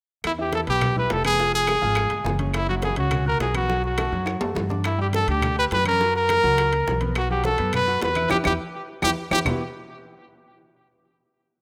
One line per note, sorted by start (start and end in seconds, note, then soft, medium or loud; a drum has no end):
0.24 0.64 E2 medium
0.24 0.32 E4 medium
0.24 high bongo medium
0.24 high conga soft
0.24 high timbale medium
0.24 claves medium
0.38 0.62 E3 medium
0.38 0.62 E4 medium
0.38 0.53 G4 medium
0.38 0.62 E5 medium
0.38 high conga soft
0.52 0.61 A4 medium
0.52 high bongo medium
0.52 high conga medium
0.52 high timbale medium
0.67 1.07 B1 medium
0.67 0.90 B3 medium
0.67 0.95 G4 medium
0.67 0.90 B4 medium
0.67 0.91 B5 medium
0.67 high conga soft
0.67 high timbale medium
0.81 high bongo medium
0.81 high conga soft
0.81 low conga medium
0.81 high timbale medium
0.81 claves medium
0.96 1.20 E4 medium
0.96 1.13 B4 medium
0.96 1.20 E5 medium
0.96 1.20 E6 medium
0.96 high conga soft
0.96 low conga medium
1.10 1.77 F1 medium
1.10 1.25 A4 medium
1.10 high bongo medium
1.10 low bongo medium
1.10 high conga soft
1.10 high timbale medium
1.10 low timbale medium
1.24 1.36 B3 medium
1.24 1.52 G#4 loud
1.24 1.36 B4 medium
1.24 1.37 B5 medium
1.24 high conga medium
1.24 high timbale medium
1.24 claves medium
1.39 1.63 F3 medium
1.39 1.63 F4 medium
1.39 1.63 F5 medium
1.39 high bongo medium
1.39 high conga soft
1.53 2.36 G#4 loud
1.53 high bongo soft
1.53 high conga soft
1.67 1.79 G#3 medium
1.67 1.79 G#4 medium
1.67 1.80 G#5 medium
1.67 high bongo medium
1.67 high conga medium
1.67 high timbale medium
1.67 claves medium
1.82 2.09 G#1 medium
1.82 2.05 F3 medium
1.82 2.06 F4 medium
1.82 2.05 F5 medium
1.82 high conga soft
1.95 high bongo medium
1.95 high conga soft
1.95 high timbale medium
1.95 claves medium
2.10 2.23 G1 medium
2.10 2.34 G#3 medium
2.10 2.35 G#4 medium
2.10 2.35 G#5 medium
2.10 high bongo soft
2.10 high conga soft
2.10 high timbale medium
2.24 2.91 F#1 medium
2.24 high bongo medium
2.24 low bongo medium
2.24 high conga medium
2.24 low timbale medium
2.39 2.63 C#4 medium
2.39 2.63 C#5 medium
2.39 2.63 C#6 medium
2.39 high bongo soft
2.39 high conga medium
2.39 high timbale medium
2.54 2.68 E4 medium
2.54 high bongo medium
2.54 high timbale medium
2.54 claves medium
2.68 2.92 F#3 medium
2.68 2.75 F#4 medium
2.68 2.92 F#4 medium
2.68 2.93 F#5 medium
2.68 high conga soft
2.82 2.97 G#4 medium
2.82 high bongo medium
2.82 high conga medium
2.82 high timbale medium
2.96 3.37 C#2 medium
2.96 3.21 C#4 medium
2.96 3.25 F#4 medium
2.96 3.21 C#5 medium
2.96 3.21 C#6 medium
2.96 high conga soft
2.96 high timbale medium
3.11 high bongo medium
3.11 high conga soft
3.11 low conga medium
3.11 high timbale medium
3.11 claves medium
3.26 3.50 F#4 medium
3.26 3.40 A#4 medium
3.26 3.50 F#5 medium
3.26 3.50 F#6 medium
3.26 high conga soft
3.26 low conga medium
3.40 4.07 B1 medium
3.40 3.54 G#4 medium
3.40 high bongo medium
3.40 low bongo medium
3.40 high conga soft
3.40 high timbale medium
3.40 low timbale medium
3.54 3.67 B3 medium
3.54 3.82 F#4 medium
3.54 3.67 B4 medium
3.54 3.67 B5 medium
3.54 high conga medium
3.54 high timbale medium
3.54 claves medium
3.69 3.93 F#3 medium
3.69 3.93 F#4 medium
3.69 3.93 F#5 medium
3.69 high bongo medium
3.69 high conga soft
3.84 4.40 F#4 medium
3.84 high bongo soft
3.84 high conga soft
3.98 4.10 A3 medium
3.98 4.10 A4 medium
3.98 4.10 A5 medium
3.98 high bongo medium
3.98 high conga medium
3.98 high timbale medium
3.98 claves medium
4.12 4.39 F#2 medium
4.12 4.36 F#3 medium
4.12 4.36 F#4 medium
4.12 4.36 F#5 medium
4.12 high conga soft
4.26 high bongo medium
4.26 high conga soft
4.26 high timbale medium
4.26 claves medium
4.41 4.55 F#2 medium
4.41 4.65 A3 medium
4.41 4.65 A4 medium
4.41 4.65 A5 medium
4.41 high bongo soft
4.41 high conga soft
4.41 low timbale medium
4.55 5.23 G2 medium
4.55 high bongo medium
4.55 low bongo medium
4.55 high conga medium
4.55 low timbale medium
4.70 4.94 D4 medium
4.70 4.94 D5 medium
4.70 4.94 D6 medium
4.70 high bongo soft
4.70 high conga medium
4.70 low timbale medium
4.84 4.99 E4 medium
4.84 high bongo medium
4.84 high timbale medium
4.84 claves medium
4.98 5.22 G3 medium
4.98 5.22 G4 medium
4.98 5.07 G4 medium
4.98 5.22 G5 medium
4.98 high conga soft
5.13 5.28 A4 medium
5.13 high bongo medium
5.13 high conga medium
5.13 high timbale medium
5.27 5.68 D2 medium
5.27 5.51 D4 medium
5.27 5.56 G4 medium
5.27 5.52 D5 medium
5.27 5.52 D6 medium
5.27 high conga soft
5.27 high timbale medium
5.42 high bongo medium
5.42 high conga soft
5.42 low conga medium
5.42 high timbale medium
5.42 claves medium
5.56 5.80 G4 medium
5.56 5.65 B4 loud
5.56 5.81 G5 medium
5.56 5.81 G6 medium
5.56 high conga soft
5.71 6.38 F#2 medium
5.71 5.86 B4 loud
5.71 high bongo medium
5.71 low bongo medium
5.71 high conga soft
5.71 high timbale medium
5.85 5.98 C#4 medium
5.85 6.13 A#4 loud
5.85 5.98 C#5 medium
5.85 5.98 C#6 medium
5.85 high conga medium
5.85 high timbale medium
5.85 claves medium
6.00 6.24 F#3 medium
6.00 6.24 F#4 medium
6.00 6.24 F#5 medium
6.00 high bongo medium
6.00 high conga soft
6.14 6.98 A#4 loud
6.14 high bongo soft
6.14 high conga soft
6.29 6.41 A#3 medium
6.29 6.41 A#4 medium
6.29 6.41 A#5 medium
6.29 high bongo medium
6.29 high conga medium
6.29 high timbale medium
6.29 claves medium
6.43 6.84 C#2 medium
6.43 6.67 F#3 medium
6.43 6.67 F#4 medium
6.43 6.67 F#5 medium
6.43 high conga soft
6.58 high bongo medium
6.58 high conga soft
6.58 high timbale medium
6.58 claves medium
6.72 6.96 A#3 medium
6.72 6.96 A#4 medium
6.72 6.96 A#5 medium
6.72 high bongo soft
6.72 high conga soft
6.72 high timbale medium
6.87 7.54 B1 medium
6.87 high bongo medium
6.87 low bongo medium
6.87 high conga medium
6.87 low timbale medium
7.00 7.24 B3 medium
7.00 7.25 B4 medium
7.00 7.25 B5 medium
7.00 high bongo soft
7.00 high conga medium
7.00 high timbale medium
7.15 7.30 F#4 medium
7.15 high bongo medium
7.15 high conga soft
7.15 high timbale medium
7.15 claves medium
7.30 7.53 F#3 medium
7.30 7.54 F#4 medium
7.30 7.44 G4 medium
7.30 7.54 F#5 medium
7.30 high conga soft
7.44 7.72 A4 medium
7.44 high bongo medium
7.44 high conga medium
7.44 high timbale medium
7.58 7.99 F#2 medium
7.58 7.82 B3 medium
7.58 7.82 B4 medium
7.58 7.83 B5 medium
7.58 high conga soft
7.58 high timbale medium
7.73 8.01 B4 loud
7.73 high bongo medium
7.73 high conga soft
7.73 low conga medium
7.73 high timbale medium
7.73 claves medium
7.87 8.11 F#4 medium
7.87 8.11 F#5 medium
7.87 8.12 F#6 medium
7.87 high conga soft
8.01 8.29 E2 medium
8.01 8.29 B4 medium
8.01 high bongo medium
8.01 low bongo medium
8.01 high conga soft
8.01 high timbale medium
8.01 low timbale medium
8.15 8.28 E4 medium
8.15 8.28 E5 medium
8.15 8.28 E6 medium
8.15 high conga medium
8.15 high timbale medium
8.15 claves medium
8.30 8.42 E2 medium
8.30 8.40 G4 medium
8.30 8.38 G4 medium
8.30 8.40 B4 medium
8.30 8.40 E5 loud
8.30 low bongo medium
8.30 high conga loud
8.30 high timbale loud
8.30 claves medium
8.44 8.57 E2 medium
8.44 8.54 G4 medium
8.44 8.53 G4 medium
8.44 8.54 B4 medium
8.44 8.54 E5 loud
8.44 low bongo medium
8.44 high conga loud
8.44 high timbale medium
8.44 claves medium
9.02 9.14 E2 medium
9.02 9.12 G4 medium
9.02 9.10 G4 loud
9.02 9.12 B4 medium
9.02 9.12 E5 medium
9.02 low bongo loud
9.02 high conga loud
9.02 high timbale loud
9.02 claves medium
9.31 9.42 E2 medium
9.31 9.40 G4 medium
9.31 9.39 G4 loud
9.31 9.40 B4 medium
9.31 9.40 E5 medium
9.31 low bongo medium
9.31 high conga medium
9.31 high timbale loud
9.31 claves medium
9.45 9.59 E2 medium
9.45 9.59 E3 medium
9.45 9.59 B3 medium
9.45 9.59 E4 medium
9.45 9.59 F#4 medium
9.45 9.59 G4 medium
9.45 9.59 B4 medium
9.45 low bongo medium
9.45 low conga loud
9.45 low timbale loud
9.45 claves loud